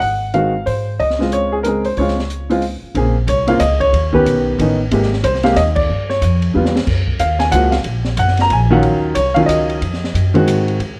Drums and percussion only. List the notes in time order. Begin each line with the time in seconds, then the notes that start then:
0.02 kick, open hi-hat
0.34 closed hi-hat
0.67 open hi-hat
1.00 kick, open hi-hat
1.10 snare
1.21 snare
1.32 closed hi-hat
1.64 closed hi-hat
1.84 open hi-hat
1.97 kick, open hi-hat
2.08 snare
2.19 snare
2.30 closed hi-hat
2.51 open hi-hat
2.62 open hi-hat
2.95 kick, ride
3.28 kick, hi-hat pedal, ride
3.48 ride
3.60 kick, hi-hat pedal, ride
3.81 kick, ride
3.93 kick, ride
4.13 kick
4.26 kick, hi-hat pedal, ride
4.59 kick, ride
4.91 kick, ride
5.03 snare
5.13 snare
5.24 kick, hi-hat pedal, ride
5.35 snare
5.43 snare, ride
5.56 kick, snare, hi-hat pedal, ride
5.76 kick, crash
6.10 snare
6.22 kick, hi-hat pedal, ride
6.42 ride
6.65 snare
6.76 snare
6.87 kick, snare, crash
7.07 kick
7.19 kick, hi-hat pedal, ride
7.40 snare, ride
7.52 kick, hi-hat pedal, ride
7.72 snare, ride
7.84 kick, ride
8.05 snare
8.17 kick, hi-hat pedal, ride
8.28 snare
8.37 snare, ride
8.50 kick, ride
8.83 kick, ride
9.15 kick, hi-hat pedal, ride
9.36 ride
9.49 kick, hi-hat pedal, ride
9.69 ride
9.82 kick, ride
9.93 snare
10.04 snare
10.15 kick, hi-hat pedal, ride
10.35 ride
10.47 kick, hi-hat pedal, ride
10.68 ride
10.80 kick, ride